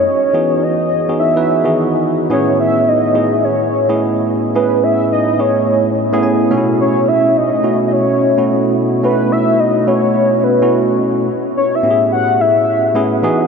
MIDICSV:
0, 0, Header, 1, 3, 480
1, 0, Start_track
1, 0, Tempo, 560748
1, 51, Time_signature, 4, 2, 24, 8
1, 11531, End_track
2, 0, Start_track
2, 0, Title_t, "Soft synth lead"
2, 0, Program_c, 0, 80
2, 0, Note_on_c, 0, 73, 102
2, 542, Note_on_c, 0, 75, 100
2, 555, Note_off_c, 0, 73, 0
2, 1017, Note_off_c, 0, 75, 0
2, 1022, Note_on_c, 0, 76, 95
2, 1702, Note_off_c, 0, 76, 0
2, 1987, Note_on_c, 0, 73, 99
2, 2203, Note_off_c, 0, 73, 0
2, 2224, Note_on_c, 0, 76, 109
2, 2469, Note_on_c, 0, 75, 110
2, 2481, Note_off_c, 0, 76, 0
2, 2948, Note_on_c, 0, 73, 87
2, 2960, Note_off_c, 0, 75, 0
2, 3659, Note_off_c, 0, 73, 0
2, 3900, Note_on_c, 0, 71, 105
2, 4139, Note_on_c, 0, 76, 120
2, 4152, Note_off_c, 0, 71, 0
2, 4375, Note_off_c, 0, 76, 0
2, 4386, Note_on_c, 0, 75, 109
2, 4624, Note_on_c, 0, 73, 93
2, 4636, Note_off_c, 0, 75, 0
2, 5097, Note_off_c, 0, 73, 0
2, 5824, Note_on_c, 0, 73, 102
2, 6061, Note_on_c, 0, 76, 110
2, 6074, Note_off_c, 0, 73, 0
2, 6309, Note_on_c, 0, 75, 111
2, 6321, Note_off_c, 0, 76, 0
2, 6738, Note_off_c, 0, 75, 0
2, 6745, Note_on_c, 0, 75, 61
2, 6787, Note_on_c, 0, 73, 89
2, 6799, Note_off_c, 0, 75, 0
2, 7499, Note_off_c, 0, 73, 0
2, 7739, Note_on_c, 0, 71, 109
2, 7978, Note_on_c, 0, 76, 118
2, 7991, Note_off_c, 0, 71, 0
2, 8216, Note_on_c, 0, 75, 108
2, 8229, Note_off_c, 0, 76, 0
2, 8451, Note_on_c, 0, 73, 107
2, 8464, Note_off_c, 0, 75, 0
2, 8933, Note_on_c, 0, 71, 87
2, 8946, Note_off_c, 0, 73, 0
2, 9412, Note_off_c, 0, 71, 0
2, 9903, Note_on_c, 0, 73, 94
2, 10057, Note_on_c, 0, 76, 99
2, 10070, Note_off_c, 0, 73, 0
2, 10373, Note_off_c, 0, 76, 0
2, 10378, Note_on_c, 0, 78, 113
2, 10621, Note_on_c, 0, 76, 98
2, 10633, Note_off_c, 0, 78, 0
2, 11336, Note_off_c, 0, 76, 0
2, 11531, End_track
3, 0, Start_track
3, 0, Title_t, "Tine electric piano"
3, 0, Program_c, 1, 4
3, 0, Control_c, 1, 64, 127
3, 63, Control_c, 1, 64, 0
3, 188, Control_c, 1, 64, 127
3, 286, Note_on_c, 1, 52, 90
3, 289, Note_on_c, 1, 59, 74
3, 293, Note_on_c, 1, 63, 71
3, 295, Note_on_c, 1, 66, 81
3, 297, Note_on_c, 1, 68, 86
3, 782, Note_off_c, 1, 52, 0
3, 784, Note_off_c, 1, 59, 0
3, 785, Note_off_c, 1, 63, 0
3, 786, Note_off_c, 1, 66, 0
3, 788, Note_off_c, 1, 68, 0
3, 928, Note_on_c, 1, 52, 69
3, 929, Note_on_c, 1, 59, 63
3, 932, Note_on_c, 1, 63, 64
3, 935, Note_on_c, 1, 66, 69
3, 937, Note_on_c, 1, 68, 82
3, 1111, Note_off_c, 1, 52, 0
3, 1111, Note_off_c, 1, 59, 0
3, 1112, Note_off_c, 1, 63, 0
3, 1114, Note_off_c, 1, 66, 0
3, 1115, Note_off_c, 1, 68, 0
3, 1162, Note_on_c, 1, 52, 68
3, 1165, Note_on_c, 1, 59, 67
3, 1169, Note_on_c, 1, 63, 67
3, 1172, Note_on_c, 1, 66, 65
3, 1173, Note_on_c, 1, 71, 87
3, 1348, Note_off_c, 1, 52, 0
3, 1349, Note_off_c, 1, 59, 0
3, 1351, Note_off_c, 1, 63, 0
3, 1352, Note_off_c, 1, 66, 0
3, 1353, Note_off_c, 1, 71, 0
3, 1404, Note_on_c, 1, 52, 74
3, 1405, Note_on_c, 1, 59, 78
3, 1409, Note_on_c, 1, 51, 72
3, 1412, Note_on_c, 1, 66, 79
3, 1414, Note_on_c, 1, 68, 92
3, 1893, Note_off_c, 1, 52, 0
3, 1894, Note_off_c, 1, 59, 0
3, 1895, Note_off_c, 1, 51, 0
3, 1897, Note_off_c, 1, 66, 0
3, 1898, Note_off_c, 1, 68, 0
3, 1966, Note_on_c, 1, 45, 79
3, 1968, Note_on_c, 1, 59, 79
3, 1970, Note_on_c, 1, 61, 82
3, 1974, Note_on_c, 1, 64, 75
3, 1977, Note_on_c, 1, 68, 89
3, 1984, Control_c, 1, 64, 0
3, 2135, Control_c, 1, 64, 127
3, 2590, Note_off_c, 1, 45, 0
3, 2591, Note_off_c, 1, 59, 0
3, 2592, Note_off_c, 1, 61, 0
3, 2594, Note_off_c, 1, 64, 0
3, 2595, Note_off_c, 1, 68, 0
3, 2688, Note_on_c, 1, 45, 64
3, 2691, Note_on_c, 1, 59, 63
3, 2694, Note_on_c, 1, 61, 62
3, 2696, Note_on_c, 1, 64, 60
3, 2700, Note_on_c, 1, 68, 77
3, 3183, Note_off_c, 1, 45, 0
3, 3184, Note_off_c, 1, 59, 0
3, 3186, Note_off_c, 1, 61, 0
3, 3187, Note_off_c, 1, 64, 0
3, 3189, Note_off_c, 1, 68, 0
3, 3325, Note_on_c, 1, 45, 80
3, 3329, Note_on_c, 1, 59, 73
3, 3331, Note_on_c, 1, 61, 75
3, 3332, Note_on_c, 1, 64, 77
3, 3337, Note_on_c, 1, 68, 84
3, 3813, Note_off_c, 1, 45, 0
3, 3815, Note_off_c, 1, 59, 0
3, 3817, Note_off_c, 1, 61, 0
3, 3817, Note_off_c, 1, 64, 0
3, 3819, Note_off_c, 1, 68, 0
3, 3893, Note_on_c, 1, 45, 72
3, 3894, Note_on_c, 1, 59, 71
3, 3897, Note_on_c, 1, 61, 69
3, 3899, Note_on_c, 1, 64, 75
3, 3903, Note_on_c, 1, 68, 85
3, 4514, Note_off_c, 1, 45, 0
3, 4514, Note_off_c, 1, 59, 0
3, 4515, Note_off_c, 1, 61, 0
3, 4517, Note_off_c, 1, 64, 0
3, 4519, Note_off_c, 1, 68, 0
3, 4609, Note_on_c, 1, 45, 66
3, 4615, Note_on_c, 1, 59, 62
3, 4617, Note_on_c, 1, 61, 59
3, 4618, Note_on_c, 1, 64, 64
3, 4619, Note_on_c, 1, 68, 78
3, 5103, Note_off_c, 1, 45, 0
3, 5106, Note_off_c, 1, 59, 0
3, 5107, Note_off_c, 1, 61, 0
3, 5108, Note_off_c, 1, 64, 0
3, 5109, Note_off_c, 1, 68, 0
3, 5243, Note_on_c, 1, 45, 98
3, 5245, Note_on_c, 1, 59, 80
3, 5248, Note_on_c, 1, 61, 90
3, 5251, Note_on_c, 1, 64, 89
3, 5253, Note_on_c, 1, 68, 107
3, 5333, Note_on_c, 1, 80, 78
3, 5555, Note_off_c, 1, 80, 0
3, 5562, Note_off_c, 1, 61, 0
3, 5566, Note_on_c, 1, 47, 86
3, 5569, Note_off_c, 1, 45, 0
3, 5569, Note_off_c, 1, 59, 0
3, 5570, Note_on_c, 1, 57, 87
3, 5572, Note_on_c, 1, 61, 84
3, 5572, Note_on_c, 1, 76, 69
3, 5573, Note_off_c, 1, 64, 0
3, 5574, Note_off_c, 1, 68, 0
3, 5575, Note_on_c, 1, 63, 65
3, 5577, Note_on_c, 1, 66, 97
3, 5583, Control_c, 1, 64, 0
3, 5629, Note_on_c, 1, 64, 85
3, 5646, Note_off_c, 1, 63, 0
3, 5745, Control_c, 1, 64, 127
3, 5795, Note_off_c, 1, 76, 0
3, 6373, Note_off_c, 1, 47, 0
3, 6375, Note_off_c, 1, 57, 0
3, 6376, Note_off_c, 1, 61, 0
3, 6378, Note_off_c, 1, 66, 0
3, 6404, Note_off_c, 1, 64, 0
3, 6529, Note_on_c, 1, 47, 73
3, 6531, Note_on_c, 1, 57, 63
3, 6536, Note_on_c, 1, 61, 61
3, 6537, Note_on_c, 1, 64, 65
3, 6541, Note_on_c, 1, 66, 80
3, 7024, Note_off_c, 1, 47, 0
3, 7024, Note_off_c, 1, 57, 0
3, 7027, Note_off_c, 1, 61, 0
3, 7027, Note_off_c, 1, 64, 0
3, 7030, Note_off_c, 1, 66, 0
3, 7166, Note_on_c, 1, 47, 82
3, 7170, Note_on_c, 1, 57, 77
3, 7172, Note_on_c, 1, 61, 73
3, 7174, Note_on_c, 1, 64, 73
3, 7178, Note_on_c, 1, 66, 86
3, 7654, Note_off_c, 1, 47, 0
3, 7656, Note_off_c, 1, 57, 0
3, 7657, Note_off_c, 1, 61, 0
3, 7658, Note_off_c, 1, 64, 0
3, 7660, Note_off_c, 1, 66, 0
3, 7729, Note_on_c, 1, 47, 78
3, 7733, Note_on_c, 1, 57, 72
3, 7734, Note_on_c, 1, 61, 72
3, 7738, Note_on_c, 1, 63, 53
3, 7740, Note_on_c, 1, 66, 79
3, 7794, Note_on_c, 1, 64, 69
3, 7807, Note_off_c, 1, 63, 0
3, 8352, Note_off_c, 1, 47, 0
3, 8354, Note_off_c, 1, 57, 0
3, 8354, Note_off_c, 1, 61, 0
3, 8357, Note_off_c, 1, 66, 0
3, 8384, Note_off_c, 1, 64, 0
3, 8448, Note_on_c, 1, 47, 72
3, 8450, Note_on_c, 1, 57, 65
3, 8453, Note_on_c, 1, 61, 64
3, 8455, Note_on_c, 1, 64, 64
3, 8457, Note_on_c, 1, 66, 76
3, 8943, Note_off_c, 1, 47, 0
3, 8944, Note_off_c, 1, 57, 0
3, 8945, Note_off_c, 1, 61, 0
3, 8946, Note_off_c, 1, 64, 0
3, 8947, Note_off_c, 1, 66, 0
3, 9087, Note_on_c, 1, 47, 79
3, 9089, Note_on_c, 1, 57, 75
3, 9090, Note_on_c, 1, 61, 77
3, 9093, Note_on_c, 1, 64, 73
3, 9096, Note_on_c, 1, 66, 93
3, 9574, Note_off_c, 1, 47, 0
3, 9576, Note_off_c, 1, 57, 0
3, 9576, Note_off_c, 1, 61, 0
3, 9578, Note_off_c, 1, 64, 0
3, 9579, Note_off_c, 1, 66, 0
3, 9663, Control_c, 1, 64, 0
3, 9834, Control_c, 1, 64, 127
3, 10127, Note_on_c, 1, 45, 74
3, 10129, Note_on_c, 1, 59, 68
3, 10129, Note_on_c, 1, 61, 73
3, 10133, Note_on_c, 1, 64, 64
3, 10136, Note_on_c, 1, 67, 66
3, 10191, Note_on_c, 1, 68, 84
3, 10206, Note_off_c, 1, 67, 0
3, 10933, Note_off_c, 1, 45, 0
3, 10934, Note_off_c, 1, 59, 0
3, 10934, Note_off_c, 1, 61, 0
3, 10936, Note_off_c, 1, 64, 0
3, 10965, Note_off_c, 1, 68, 0
3, 11082, Note_on_c, 1, 45, 86
3, 11085, Note_on_c, 1, 59, 89
3, 11087, Note_on_c, 1, 61, 85
3, 11089, Note_on_c, 1, 64, 92
3, 11094, Note_on_c, 1, 68, 104
3, 11316, Note_off_c, 1, 59, 0
3, 11323, Note_on_c, 1, 52, 92
3, 11324, Note_off_c, 1, 68, 0
3, 11326, Note_off_c, 1, 45, 0
3, 11326, Note_on_c, 1, 59, 87
3, 11328, Note_on_c, 1, 63, 87
3, 11329, Note_off_c, 1, 61, 0
3, 11330, Note_off_c, 1, 64, 0
3, 11331, Note_on_c, 1, 66, 82
3, 11334, Note_on_c, 1, 68, 100
3, 11341, Control_c, 1, 64, 0
3, 11498, Control_c, 1, 64, 127
3, 11531, Note_off_c, 1, 52, 0
3, 11531, Note_off_c, 1, 59, 0
3, 11531, Note_off_c, 1, 63, 0
3, 11531, Note_off_c, 1, 66, 0
3, 11531, Note_off_c, 1, 68, 0
3, 11531, End_track
0, 0, End_of_file